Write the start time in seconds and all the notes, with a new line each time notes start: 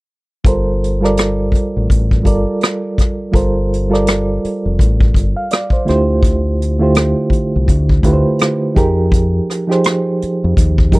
0.44 G1 G3 F4 A4 A#4 C5, kick, closed hi-hat
0.84 closed hi-hat
1.01 G3 F4 A4 A#4 D5, cross-stick
1.17 cross-stick, closed hi-hat
1.52 muted fingered electric bass stroke, kick, closed hi-hat
1.77 A1
1.90 A1, kick, closed hi-hat
2.11 kick
2.24 G1 G3 F4 A4 A#4 D5, kick, closed hi-hat
2.61 cross-stick, closed hi-hat
2.98 kick, cross-stick, closed hi-hat
3.32 G1 G3 F4 A4 A#4, kick, closed hi-hat
3.36 C5
3.73 closed hi-hat
3.90 G3 F4 A4 A#4 D5
3.94 cross-stick
4.07 cross-stick, closed hi-hat
4.44 muted fingered electric bass stroke, closed hi-hat
4.65 F1
4.79 A1, kick, closed hi-hat
5.00 kick
5.14 G1, kick, closed hi-hat
5.37 F5
5.50 D5, cross-stick, closed hi-hat
5.70 C5, kick
5.85 D3 A3 E4 F4 G4 C5, closed hi-hat
5.89 D2, cross-stick
6.23 kick, closed hi-hat
6.62 closed hi-hat
6.79 D3 A3 E4 F4 G4
6.83 C5
6.95 cross-stick, closed hi-hat
7.30 muted fingered electric bass stroke, kick, closed hi-hat
7.56 C2
7.68 D2, kick, closed hi-hat
7.89 kick
8.03 D2 D3 A3 E4 F4 G4 B4, kick, closed hi-hat
8.13 C5
8.39 cross-stick, closed hi-hat
8.75 F2 F3 D#4 G4 G#4 A#4, kick, closed hi-hat
9.12 kick, closed hi-hat
9.50 cross-stick, closed hi-hat
9.68 F3 D#4 G4 G#4 C5, cross-stick
9.84 cross-stick, closed hi-hat
10.22 muted fingered electric bass stroke, closed hi-hat
10.44 F2
10.57 D#2, kick, closed hi-hat
10.78 kick
10.92 G2 F3 D#4 G4 G#4 A#4, kick, closed hi-hat